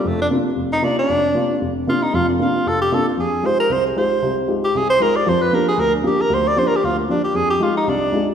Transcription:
X:1
M:4/4
L:1/8
Q:"Swing" 1/4=230
K:Bb
V:1 name="Tenor saxophone"
A, D z3 E D D- | D4 z2 F E | F D F2 A G A F | [K:Fdor] A2 c B c A c2- |
c z2 G A c B d | c =B _B A B D G B | c d (3c B G F B, D G | A G F E D3 z |]
V:2 name="Grand piano"
[F,,,F,,]2 [C,B,DF] z F,,,2 [C,B,DF] z | F,,,2 [C,B,DF] z F,,,2 [C,B,DF] z | [F,,,F,,]2 [C,B,DF] z F,,,2 [C,B,DF] z | [K:Fdor] F,,2 [A,EFG] z C,,2 [A,EFG] z |
[C,,C,]2 [A,EFG] z C,,2 [A,EFG] z | [F,,F,]2 [F,B,DG] z D,,2 [F,B,DG] z | D,,2 [F,B,DG] z D,,2 [F,B,DG] z | F,,2 [A,EFG] z C,,2 [A,EFG] z |]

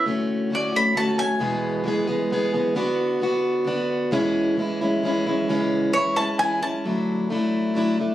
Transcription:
X:1
M:3/4
L:1/8
Q:1/4=132
K:Dlyd
V:1 name="Mandolin"
z2 d b a g- | g2 z4 | z6 | z6 |
z2 c a g a- | a2 z4 |]
V:2 name="Steel-string acoustic guitar"
[D,A,CF]2 [D,A,CF] [A,CF] [D,A,CF] [A,CF] | [E,,B,,E,G,B,G]2 [E,G,B,G] [E,G,B,G] [E,G,B,G] [E,G,B,G] | [D,B,DF]2 [D,B,DF]2 [D,B,DF]2 | [E,,B,,E,G,CE]2 [E,G,CE] [E,G,CE] [E,G,CE] [E,G,CE] |
[C,E,G,CE]2 [E,G,CE] [G,CE] [E,G,CE] [G,CE] | [D,F,A,DE]2 [F,A,DE]2 [F,A,DE] [A,DE] |]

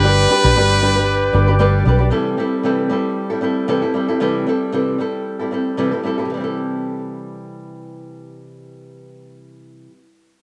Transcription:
X:1
M:4/4
L:1/16
Q:"Swing 16ths" 1/4=115
K:C
V:1 name="Tonewheel organ"
[Bdgd']16 | z16 | z16 | z16 |
z16 |]
V:2 name="Trumpet"
B12 z4 | z16 | z16 | z16 |
z16 |]
V:3 name="Reed electric piano"
[DGB]12- [DGB]2 z2 | z16 | z16 | z16 |
z16 |]
V:4 name="Nylon-string guitar"
[G,DGB]2 [G,DGB] [DGB] [G,DGB]2 [G,DGB] [DGB]3 [G,DGB] [DGB] [G,DGB]2 [G,DGB] [DGB] | [C,E,G,CEA]2 [G,CEA]2 [C,E,G,CEA]2 [G,CEA]3 [G,CEA] [G,CEA]2 [C,E,G,CEA] [G,CEA] [G,CEA] [G,CEA] | [C,E,G,CEA]2 [G,CEA]2 [C,E,G,CEA]2 [G,CEA]3 [G,CEA] [G,CEA]2 [C,E,G,CEA] [G,CEA] [G,CEA] [G,CEA] | [C,E,G,CEA]16- |
[C,E,G,CEA]16 |]
V:5 name="Fingered electric bass" clef=bass
G,,,2 z B,,, G,,,6 G,,,4 B,,,2 | z16 | z16 | z16 |
z16 |]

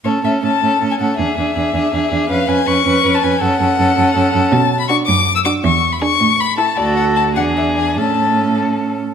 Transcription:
X:1
M:6/8
L:1/16
Q:3/8=107
K:A
V:1 name="Violin"
c2 e2 a4- a g f2 | e12 | ^e2 g2 c'4- c' a g2 | f12 |
a3 b c'2 d'3 e' d'2 | c'3 b c'4 b2 a2 | d2 f2 a2 f2 e2 g2 | a6 z6 |]
V:2 name="Violin"
A2 A2 A2 A2 A2 A2 | G2 G2 G2 G2 G2 G2 | B2 B2 B2 B2 B2 B2 | A2 A2 A2 A2 A2 A2 |
z4 F2 z4 F2 | z4 G2 z4 A2 | A6 G6 | A8- A2 z2 |]
V:3 name="Viola"
C2 C2 C2 C2 C2 C2 | D2 D2 D2 D2 D2 D2 | C2 C2 C2 C2 C2 C2 | C2 C2 C2 C2 C2 C2 |
z4 D2 z4 D2 | z4 D2 z4 E2 | F6 D6 | C8- C2 z2 |]
V:4 name="Cello" clef=bass
A,,2 A,,2 A,,2 A,,2 A,,2 A,,2 | E,,2 E,,2 E,,2 E,,2 E,,2 E,,2 | ^E,,2 E,,2 E,,2 E,,2 E,,2 E,,2 | F,,2 F,,2 F,,2 F,,2 F,,2 F,,2 |
B,,6 F,,6 | E,,6 A,,6 | D,,6 E,,6 | A,,8- A,,2 z2 |]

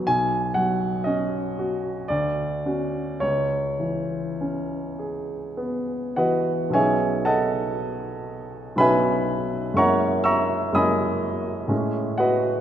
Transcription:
X:1
M:3/4
L:1/8
Q:1/4=58
K:Bmix
V:1 name="Grand piano"
g f d2 =d2 | c4 z [FBdf] | [Gceg] [Adfa]3 [Begb]2 | [cf^ac'] [eac'e'] [dgbd']2 z [FBdf] |]
V:2 name="Grand piano"
B,,, F, C F =D,, [CF] | C,, E, C G B, E, | [B,,,F,B,CD]4 [B,,,F,B,CD]2 | [F,,G,^A,CE]2 [F,,G,A,CE]2 [=A,,G,CE]2 |]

